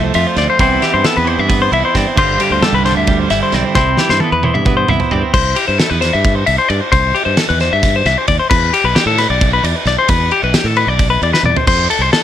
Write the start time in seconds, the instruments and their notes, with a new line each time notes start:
Already playing: fingered electric bass C2, clean electric guitar F2 F3 A3 E4
0.04 clean electric guitar C5
0.14 fingered electric bass F2, clean electric guitar F4 E5, ride
0.27 clean electric guitar C5
0.36 fingered electric bass D2, clean electric guitar C4 D5, snare, ride
0.50 clean electric guitar C5
0.59 fingered electric bass C2, clean electric guitar C3 E3 B3 C4 E4 C5, kick, ride
0.80 clean electric guitar E3 G4, snare, ride
0.94 fingered electric bass G2, clean electric guitar C5
1.04 clean electric guitar B3 A4, snare, ride
1.17 fingered electric bass E2, clean electric guitar B4
1.25 clean electric guitar E3 C5, ride
1.39 fingered electric bass G2, clean electric guitar E5
1.48 clean electric guitar B3, kick, ride
1.62 clean electric guitar C5
1.72 fingered electric bass C2, clean electric guitar E4 E5, ride
1.85 clean electric guitar C5
1.95 fingered electric bass G2, clean electric guitar C4 D5, kick, snare, ride
2.07 clean electric guitar C5
2.16 fingered electric bass G1, clean electric guitar G2 D3 G3 C4 F4 C5, kick, crash
2.39 clean electric guitar D3 G4, ride
2.50 fingered electric bass D2, clean electric guitar C5
2.62 clean electric guitar G3 A4, snare, ride
2.73 fingered electric bass C2, clean electric guitar B4
2.84 clean electric guitar D3 C5, snare, ride
2.95 fingered electric bass D2, clean electric guitar E5
3.07 clean electric guitar G3, kick, ride
3.19 clean electric guitar C5
3.30 fingered electric bass G1, clean electric guitar E4 E5, snare, ride
3.43 clean electric guitar C5
3.52 fingered electric bass B1, clean electric guitar C4 D5, snare, ride
3.65 clean electric guitar C5
3.75 fingered electric bass C2, clean electric guitar C3 E4 C5, kick, snare
3.97 clean electric guitar E3 G4, snare
4.09 fingered electric bass G2, clean electric guitar C5, snare
4.20 clean electric guitar B3 A4, high tom
4.32 fingered electric bass E2, clean electric guitar B4
4.43 clean electric guitar E3 C5, mid tom
4.54 fingered electric bass G2, clean electric guitar E5, mid tom
4.65 clean electric guitar B3, kick, mid tom
4.77 clean electric guitar C5
4.88 fingered electric bass C2, clean electric guitar E4 E5, mid tom
5.00 clean electric guitar C5, floor tom
5.11 fingered electric bass G2, clean electric guitar C4 D5, floor tom
5.23 clean electric guitar C5
5.34 fingered electric bass C2, clean electric guitar C5, kick, crash
5.56 clean electric guitar G4, ride
5.68 fingered electric bass G2, clean electric guitar C5
5.78 clean electric guitar A4, snare, ride
5.90 fingered electric bass E2, clean electric guitar B4
6.01 clean electric guitar C5, snare, ride
6.13 fingered electric bass G2, clean electric guitar E5
6.25 kick, ride
6.35 clean electric guitar C5
6.46 fingered electric bass C2, clean electric guitar E5, ride
6.58 clean electric guitar C5
6.69 fingered electric bass G2, clean electric guitar D5, ride
6.81 clean electric guitar C5
6.92 fingered electric bass C2, clean electric guitar C5, kick, ride
7.15 clean electric guitar G4, ride
7.25 fingered electric bass G2, clean electric guitar C5
7.37 clean electric guitar A4, snare, ride
7.49 fingered electric bass E2, clean electric guitar B4
7.60 clean electric guitar C5, snare, ride
7.73 fingered electric bass G2, clean electric guitar E5
7.83 kick, snare, ride
7.96 clean electric guitar C5
8.05 fingered electric bass C2, clean electric guitar E5, snare, ride
8.18 clean electric guitar C5
8.28 fingered electric bass D#2, clean electric guitar D5, kick, ride
8.39 clean electric guitar C5
8.50 fingered electric bass E2, clean electric guitar B4, kick, crash
8.73 clean electric guitar G4, ride
8.84 fingered electric bass B1, clean electric guitar B4
8.95 clean electric guitar G4, snare, ride
9.06 fingered electric bass A2, clean electric guitar A4
9.18 clean electric guitar B4, snare, ride
9.30 fingered electric bass B1, clean electric guitar D5
9.41 kick, ride
9.53 clean electric guitar B4
9.63 fingered electric bass E2, clean electric guitar D5, ride
9.76 clean electric guitar B4
9.86 fingered electric bass B1, clean electric guitar D5, snare, ride
9.98 clean electric guitar C5
10.08 fingered electric bass E2, clean electric guitar B4, kick, ride
10.31 clean electric guitar G4, ride
10.43 fingered electric bass B1, clean electric guitar B4
10.54 clean electric guitar G4, snare, ride
10.64 fingered electric bass A2, clean electric guitar A4
10.76 clean electric guitar B4, ride
10.87 fingered electric bass B1, clean electric guitar D5
10.99 kick, ride
11.10 clean electric guitar B4
11.22 fingered electric bass E2, clean electric guitar D5, ride
11.33 clean electric guitar B4, snare
11.43 fingered electric bass E2, clean electric guitar D5, mid tom
11.56 clean electric guitar C5, floor tom
11.67 fingered electric bass F2, clean electric guitar C5, kick, ride, crash
11.90 clean electric guitar A4, ride
11.99 fingered electric bass C2, clean electric guitar C5
12.13 clean electric guitar A4, snare, ride